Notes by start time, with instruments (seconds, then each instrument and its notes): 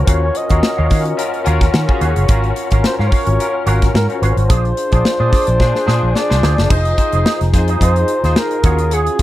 Already playing: tine electric piano C#4 F4 F#4 A#4
0.03 tine electric piano C#4 F4 F#4, flugelhorn C5
0.07 fingered electric bass D#2, clean electric guitar F#4 C#5 F5, tine electric piano C5, flugelhorn C#5, kick, closed hi-hat
0.22 muted clean electric guitar stroke
0.34 flugelhorn D#5, muted clean electric guitar stroke, closed hi-hat
0.49 fingered electric bass D#2, tine electric piano C#4 F4 F#4 A#4, clean electric guitar F#4 C#5 F5, kick, closed hi-hat
0.62 muted clean electric guitar stroke, snare
0.77 fingered electric bass D#2, tine electric piano C#4 F4 F#4 A#4, clean electric guitar F#4 C#5 F5
0.89 fingered electric bass D#3, clean electric guitar F#4 C#5 F5, kick, snare, open hi-hat
1.05 muted clean electric guitar stroke, closed hi-hat
1.17 tine electric piano C#4 F4 F#4 A#4, muted clean electric guitar stroke, closed hi-hat
1.32 muted clean electric guitar stroke, closed hi-hat
1.44 fingered electric bass D#2, tine electric piano C#4 F4 F#4 A#4, clean electric guitar F#4 C#5 F5, closed hi-hat
1.60 muted clean electric guitar stroke, kick, snare, closed hi-hat
1.73 fingered electric bass D#3, muted clean electric guitar stroke, snare
1.88 tine electric piano C#4 F4 F#4 G#4, muted clean electric guitar stroke, kick
2.00 fingered electric bass D#2, clean electric guitar F#4 C#5 F5, closed hi-hat
2.16 fingered electric bass F#1, clean electric guitar F#4 C#5 F5, closed hi-hat
2.29 fingered electric bass G#1, tine electric piano C#4 F4 F#4 A#4, clean electric guitar F#4 C#5 F5, kick, closed hi-hat
2.44 muted clean electric guitar stroke, closed hi-hat
2.56 muted clean electric guitar stroke, closed hi-hat
2.71 fingered electric bass G#1, tine electric piano C#4 F4 F#4 A#4, clean electric guitar F#4 C#5 F5, kick, closed hi-hat
2.84 flugelhorn C5, muted clean electric guitar stroke, snare
2.99 fingered electric bass G#2, tine electric piano C#4 F4 F#4 A#4, clean electric guitar F#4 C#5 F5, snare
3.06 flugelhorn C5
3.11 clean electric guitar F#4 C#5 F5, flugelhorn C#5, kick, open hi-hat
3.26 fingered electric bass G#1, muted clean electric guitar stroke, closed hi-hat
3.39 tine electric piano C#4 F4 F#4 A#4, muted clean electric guitar stroke, closed hi-hat
3.54 muted clean electric guitar stroke
3.66 fingered electric bass G#1, tine electric piano C#4 F4 F#4 A#4, clean electric guitar F#4 C#5 F5, closed hi-hat
3.82 muted clean electric guitar stroke, kick, snare, closed hi-hat
3.94 fingered electric bass G#2, flugelhorn A#4, muted clean electric guitar stroke, snare
4.09 tine electric piano C#4 F4 F#4 C5, muted clean electric guitar stroke, closed hi-hat
4.22 fingered electric bass G#1, clean electric guitar F#4 C#5 F5, flugelhorn C5, closed hi-hat
4.37 fingered electric bass G#1, muted clean electric guitar stroke, closed hi-hat
4.49 fingered electric bass A#1, clean electric guitar D4 G#4 C5, tine electric piano D4 F4 G#4 C5, kick, closed hi-hat
4.64 muted clean electric guitar stroke, closed hi-hat
4.77 muted clean electric guitar stroke, closed hi-hat
4.91 fingered electric bass A#1, tine electric piano D4 F4 G#4 C5, clean electric guitar D4 G#4 C5, kick, closed hi-hat
5.04 muted fingered electric bass stroke, snare
5.19 fingered electric bass A#2, tine electric piano D4 F4 G#4 D5, clean electric guitar D4 G#4 C5
5.31 clean electric guitar D4 G#4 C5, kick, snare, open hi-hat
5.46 fingered electric bass A#1, muted clean electric guitar stroke, closed hi-hat
5.58 fingered electric bass A#2, tine electric piano D4 F4 G#4 C5, muted clean electric guitar stroke, kick, snare
5.73 muted clean electric guitar stroke, snare
5.86 fingered electric bass A#2, clean electric guitar D4 G#4 C5, tine electric piano D4 F4 G#4 C5, snare
6.02 fingered electric bass A#1, muted clean electric guitar stroke
6.14 flugelhorn D5, muted clean electric guitar stroke, snare
6.29 fingered electric bass C2, tine electric piano D4 F4 G#4 C5, muted clean electric guitar stroke, snare
6.43 fingered electric bass D2, clean electric guitar D4 G#4 C5, snare
6.57 fingered electric bass F#1, muted clean electric guitar stroke, snare
6.65 flugelhorn D5
6.69 fingered electric bass F1, clean electric guitar D#4 G#4 C5, tine electric piano D#4 F4 G#4 C5, flugelhorn D#5, kick, crash
6.85 muted clean electric guitar stroke, closed hi-hat
6.97 tine electric piano D#4 F4 G#4 C5, muted clean electric guitar stroke, kick, closed hi-hat
7.12 fingered electric bass F1, clean electric guitar D#4 G#4 C5, closed hi-hat
7.25 clean electric guitar D#4 G#4 C5, snare
7.41 fingered electric bass F1, muted clean electric guitar stroke, snare, closed hi-hat
7.53 fingered electric bass F2, tine electric piano D#4 F4 G#4 C5, muted clean electric guitar stroke, kick, snare, closed hi-hat
7.68 clean electric guitar D#4 G#4 C5, closed hi-hat
7.81 fingered electric bass F2, clean electric guitar D#4 G#4 C5, tine electric piano D#4 F4 G#4 D#5, flugelhorn C5, kick, closed hi-hat
7.96 muted clean electric guitar stroke, closed hi-hat
8.08 muted clean electric guitar stroke, closed hi-hat
8.23 fingered electric bass D#2, tine electric piano D#4 F4 G#4 C5, clean electric guitar D#4 G#4 C5, snare, closed hi-hat
8.36 flugelhorn A#4, snare
8.51 muted clean electric guitar stroke, closed hi-hat
8.64 fingered electric bass D#2, tine electric piano C#4 F4 F#4 G4, clean electric guitar G#4 C#5 F#5, kick, closed hi-hat
8.72 tine electric piano G#4
8.78 muted clean electric guitar stroke, closed hi-hat
8.91 clean electric guitar G#4 C#5 F#5, flugelhorn G#4, closed hi-hat
9.06 muted clean electric guitar stroke, closed hi-hat
9.19 tine electric piano C#4, closed hi-hat